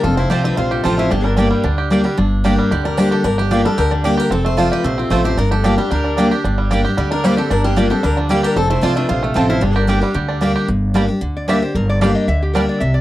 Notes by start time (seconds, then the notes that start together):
0.03 F1 F2 C4 F4 A4
0.17 C4 E4 C5
0.30 C2 F3 A3 C4 F4 G4 C5 D5 A5
0.44 C4 D4 B4
0.57 A#1 C3 F4 C5
0.71 A3 F4 G4
0.84 A1 F3 A3 C4 F4 A4 C5 A5
0.98 A3 E4 C5
1.11 G1 G2 A#3 D4 G4
1.24 G3 D4 A#4
1.37 G3 A#3 D4 G4 D5 G5
1.51 G3
1.64 D2 D3 D4
1.78 G4
1.90 G3 A#3 D4 G4 D5 G5
2.04 G3 D4 G4
2.17 G1 G2 D4
2.44 G3 A#3 D4 G4 D5 G5
2.58 G3
2.71 D2 D3 G4 D5
2.85 D4 A#4
2.97 G3 A#3 D4 G4 C5 D5 G5
3.11 G4 A4
3.24 G1 G2 D4 A#4
3.38 G4
3.51 G3 A#3 D4 F4 G4 D5 G5
3.65 G3 D4 G4 A4
3.78 D2 D3 G4 A#4
3.91 D4
4.04 G3 A#3 D4 G4 D5 G5
4.17 G4 A#4
4.30 F1 F2 C4 A4
4.45 A3 C5
4.57 F3 A3 C4 F4 C5 D5 A5
4.72 G4 B4
4.84 A#1 C3 A3 C5
4.98 C4 F4
5.10 A1 F3 A3 C4 F4 A4 C5 A5
5.24 C4 F4 G4 C5
5.37 G1 G2 D4 A#4
5.51 G4 A4
5.64 G3 A#3 D4 F4 G4 D5 G5
5.78 G3 D4 G4
5.91 D2 D3 D4 G4 A#4
6.04 D4
6.17 G3 A#3 D4 G4 D5 G5
6.31 D4 G4
6.44 G1 G2 D4
6.58 G3
6.71 G3 A#3 D4 G4 D5 G5
6.84 D4 G4
6.97 D2 D3 G3 G4 D5
7.11 D4 A#4
7.24 G3 A#3 D4 G4 C5 D5 G5
7.37 C4 D4 G4 A4
7.50 G1 G2 D4 A#4
7.64 G3 A#3 G4
7.76 G3 A#3 D4 F4 G4 D5 G5
7.90 C4 D4 G4 A4
8.03 D2 D3 G3 D4 A#4
8.17 F3 D4
8.29 G3 A#3 D4 G4 D5 G5
8.43 D4 G4 A#4
8.56 F1 F2 C4 A4
8.70 A3 E4 C5
8.81 C2 F3 A3 C4 F4 C5 D5 A5
8.96 A3 D4 B4
9.09 A#1 C3 F4 C5
9.23 A3 F4
9.34 A1 F3 A3 C4 F4 A4 C5 A5
9.49 E4 F4 C5
9.61 G1 G2 A#3 D4 G4
9.75 D4 G4 A#4
9.87 G3 A#3 D4 G4 D5 G5
10.01 G3 D4 G4
10.14 D2 D3 G4
10.28 D4
10.41 G3 A#3 D4 G4 D5 G5
10.56 G4
10.68 G1 G2
10.94 G3 A#3 D4 G4 D5 G5
11.08 D4 G4
11.21 D2 D3
11.37 D5
11.48 G3 A#3 D4 G4 D5 E5 G5
11.62 D4 G4 C5
11.75 G1 G2 A#4
11.89 D5
12.01 G3 A#3 D4 G4 D5 F5 G5
12.15 D#5
12.28 D2 D3 E5
12.43 G4
12.54 G3 A#3 D4 G4 A#4 D5 G5
12.69 D5
12.80 C2 C3 E5
12.94 D5